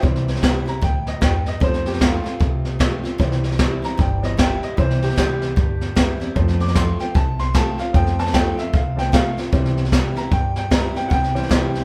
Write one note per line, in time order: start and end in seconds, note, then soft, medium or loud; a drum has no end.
0.02 0.31 C2 medium
0.02 0.79 C3 medium
0.02 0.63 E3 medium
0.02 0.63 G3 medium
0.02 0.64 C4 medium
0.02 kick loud
0.02 snare soft
0.16 snare soft
0.28 snare soft
0.35 snare soft
0.42 0.77 C2 medium
0.42 0.65 E3 medium
0.42 0.66 G3 loud
0.42 0.66 C4 medium
0.42 0.64 E4 medium
0.42 kick medium
0.42 snare loud
0.42 hi-hat pedal medium
0.66 0.82 C4 soft
0.66 0.81 E4 medium
0.66 0.83 A#5 medium
0.66 snare soft
0.81 1.16 D2 medium
0.81 1.20 A2 medium
0.81 1.07 G5 medium
0.81 kick loud
0.81 snare soft
1.07 1.22 D#5 medium
1.07 snare soft
1.21 1.55 E2 medium
1.21 1.59 G2 medium
1.21 1.46 G5 medium
1.21 kick medium
1.21 snare loud
1.21 hi-hat pedal medium
1.46 1.62 D#5 medium
1.46 snare soft
1.60 2.37 F2 medium
1.60 2.17 F2 medium
1.60 3.15 F3 medium
1.60 3.16 A3 soft
1.60 3.16 C4 medium
1.60 1.86 C5 loud
1.60 kick loud
1.60 snare soft
1.73 snare soft
1.86 2.01 G4 medium
1.86 snare soft
1.93 snare soft
2.00 2.24 F3 medium
2.00 2.24 A3 medium
2.00 2.24 C4 loud
2.00 2.22 F4 loud
2.00 3.17 F4 loud
2.00 kick medium
2.00 snare loud
2.00 hi-hat pedal medium
2.24 2.40 C4 soft
2.24 2.39 F4 medium
2.24 snare soft
2.40 2.96 C2 medium
2.40 3.16 C3 medium
2.40 kick loud
2.40 snare soft
2.65 snare soft
2.79 3.03 F3 medium
2.79 3.03 A3 medium
2.79 3.03 C4 medium
2.79 3.02 F4 medium
2.79 kick medium
2.79 snare loud
2.79 hi-hat pedal medium
3.04 3.19 C4 soft
3.04 3.19 F4 medium
3.04 snare soft
3.18 3.75 C2 loud
3.18 3.95 C3 loud
3.18 4.21 E3 medium
3.18 4.21 G3 medium
3.18 4.22 C4 medium
3.18 kick loud
3.18 snare soft
3.32 snare soft
3.44 snare soft
3.52 snare soft
3.58 3.82 E3 medium
3.58 3.82 G3 medium
3.58 3.82 C4 medium
3.58 3.81 E4 medium
3.58 kick medium
3.58 snare loud
3.58 hi-hat pedal medium
3.82 3.98 C4 soft
3.82 3.97 E4 medium
3.82 3.99 A#5 loud
3.82 snare soft
3.97 4.54 G1 medium
3.97 4.74 G2 loud
3.97 4.23 G5 medium
3.97 kick loud
3.97 snare soft
4.22 4.36 E3 soft
4.22 4.37 G3 soft
4.22 4.37 C4 medium
4.22 4.39 D#5 medium
4.22 snare soft
4.37 4.76 E3 medium
4.37 4.76 G3 loud
4.37 4.76 C4 loud
4.37 4.77 E4 loud
4.37 4.62 G5 medium
4.37 kick medium
4.37 snare loud
4.37 hi-hat pedal medium
4.63 4.78 D#5 medium
4.63 snare soft
4.77 5.06 C2 medium
4.77 5.53 C3 loud
4.77 5.06 E3 medium
4.77 5.06 G3 medium
4.77 5.07 C4 medium
4.77 5.02 C5 medium
4.77 kick loud
4.77 snare soft
4.90 snare soft
5.02 5.17 G4 medium
5.02 snare soft
5.10 snare soft
5.16 5.51 C2 medium
5.16 5.55 E3 medium
5.16 5.55 G3 medium
5.16 5.55 C4 loud
5.16 5.56 E4 medium
5.16 6.33 G4 medium
5.16 kick medium
5.16 snare loud
5.16 hi-hat pedal medium
5.42 snare soft
5.56 5.90 D2 medium
5.56 6.32 G2 medium
5.56 kick loud
5.56 snare soft
5.81 snare soft
5.95 6.30 E2 medium
5.95 6.19 E3 medium
5.95 6.19 G3 loud
5.95 6.19 C4 medium
5.95 6.19 E4 loud
5.95 kick medium
5.95 snare loud
5.95 hi-hat pedal medium
6.20 6.36 C4 medium
6.20 6.35 E4 medium
6.20 snare soft
6.35 7.12 F2 medium
6.35 6.92 F2 loud
6.35 6.64 F3 medium
6.35 6.64 A3 medium
6.35 6.65 C4 medium
6.35 kick loud
6.35 snare soft
6.48 snare soft
6.60 6.75 D6 loud
6.60 snare soft
6.68 snare soft
6.74 6.98 F3 medium
6.74 6.98 A3 loud
6.74 6.99 C4 medium
6.74 6.98 F4 loud
6.74 6.99 C6 medium
6.74 kick medium
6.74 snare loud
6.74 hi-hat pedal medium
6.99 7.15 C4 soft
6.99 7.14 F4 medium
6.99 7.15 G5 medium
6.99 snare soft
7.15 7.70 C2 medium
7.15 7.91 C3 medium
7.15 7.39 A5 medium
7.15 kick loud
7.15 snare soft
7.39 7.54 C6 loud
7.39 snare soft
7.54 7.77 F3 medium
7.54 7.78 A3 medium
7.54 7.78 C4 medium
7.54 7.77 F4 loud
7.54 7.78 A5 loud
7.54 kick medium
7.54 snare loud
7.54 hi-hat pedal medium
7.78 7.94 C4 soft
7.78 7.93 F4 medium
7.78 7.94 F5 medium
7.78 snare soft
7.93 8.49 F2 loud
7.93 8.70 F2 medium
7.93 8.54 F3 medium
7.93 8.54 A3 medium
7.93 8.55 C4 medium
7.93 8.18 G5 loud
7.93 kick loud
7.93 snare soft
8.07 snare soft
8.19 8.34 A5 loud
8.19 snare soft
8.26 snare soft
8.33 8.56 F3 medium
8.33 8.57 A3 medium
8.33 8.57 C4 loud
8.33 8.56 F4 loud
8.33 8.57 G5 loud
8.33 kick medium
8.33 snare loud
8.33 hi-hat pedal medium
8.57 8.73 C4 medium
8.57 8.72 F4 medium
8.57 8.73 E5 medium
8.57 snare soft
8.73 9.29 C2 medium
8.73 9.49 C3 medium
8.73 8.97 F5 medium
8.73 kick loud
8.73 snare soft
8.96 9.11 F3 soft
8.96 9.11 A3 soft
8.96 9.11 C4 medium
8.96 9.13 G5 loud
8.96 snare soft
9.12 9.35 F3 medium
9.12 9.36 A3 medium
9.12 9.36 C4 loud
9.12 9.36 F4 medium
9.12 9.37 F5 loud
9.12 kick medium
9.12 snare loud
9.12 hi-hat pedal medium
9.37 9.53 C4 soft
9.37 9.52 F4 medium
9.37 snare soft
9.51 10.08 C2 loud
9.51 10.28 C3 loud
9.51 9.81 E3 medium
9.51 9.81 G3 medium
9.51 9.81 C4 medium
9.51 kick loud
9.51 snare soft
9.65 snare soft
9.77 snare soft
9.85 snare soft
9.92 10.15 E3 medium
9.92 10.15 G3 loud
9.92 10.15 C4 loud
9.92 10.14 E4 loud
9.92 kick medium
9.92 snare loud
9.92 hi-hat pedal medium
10.16 10.31 C4 soft
10.16 10.31 E4 medium
10.16 10.32 A#5 medium
10.16 snare soft
10.31 11.07 G2 loud
10.31 10.87 G2 medium
10.31 10.56 G5 medium
10.31 kick loud
10.31 snare soft
10.56 10.71 G5 medium
10.56 snare soft
10.71 10.94 E3 medium
10.71 10.94 G3 medium
10.71 10.94 C4 medium
10.71 10.93 E4 loud
10.71 10.95 A#5 loud
10.71 kick loud
10.71 snare loud
10.71 hi-hat pedal medium
10.94 11.10 C4 soft
10.94 11.09 E4 medium
10.94 11.11 G5 medium
10.94 snare soft
11.08 11.39 C2 medium
11.08 11.84 C3 medium
11.08 11.11 F#5 medium
11.08 kick loud
11.08 snare soft
11.13 11.84 G5 loud
11.24 snare soft
11.34 11.84 E3 medium
11.34 11.84 G3 medium
11.34 11.84 C4 medium
11.34 snare soft
11.43 snare soft
11.49 11.84 C2 medium
11.49 11.73 E3 medium
11.49 11.73 G3 loud
11.49 11.73 C4 medium
11.49 11.73 E4 loud
11.49 kick medium
11.49 snare loud
11.49 hi-hat pedal medium
11.74 11.84 C4 medium
11.74 11.84 E4 medium
11.74 snare soft